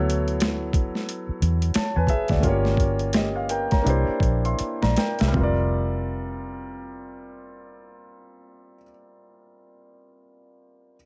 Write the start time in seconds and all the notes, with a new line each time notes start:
Already playing: D2 F#3 B3 E4 A4 C#5
0.10 closed hi-hat
0.28 closed hi-hat
0.40 snare, closed hi-hat
0.73 kick, closed hi-hat
0.95 snare
1.09 closed hi-hat
1.29 muted fingered electric bass stroke
1.42 E2, closed hi-hat
1.62 closed hi-hat
1.74 C#5 A5, muted fingered electric bass stroke, snare, closed hi-hat
1.96 E2 B4 G#5
2.07 G#4 E5, kick, closed hi-hat
2.28 D2 F#4 D5, kick, snare, closed hi-hat
2.40 G1 A3 C#4 F4, kick, closed hi-hat
2.46 A#3 G4 C#5
2.65 snare
2.77 kick, closed hi-hat
2.99 closed hi-hat
3.13 G4 D#5, snare, closed hi-hat
3.36 F5
3.49 A#4 G5, closed hi-hat
3.71 C#5 A#5, kick, snare, closed hi-hat
3.82 A#3 D4 E4
3.86 C2 G4 C5, closed hi-hat
4.20 A#1, kick, closed hi-hat
4.45 E5 C6, closed hi-hat
4.59 muted fingered electric bass stroke, closed hi-hat
4.82 A#1 D5 A#5, snare
4.97 A#4 G5, snare, closed hi-hat
5.19 C2 G4 E5, snare, closed hi-hat
5.28 G3 C4
5.34 F1 F4, kick, floor tom
5.40 A#4 D5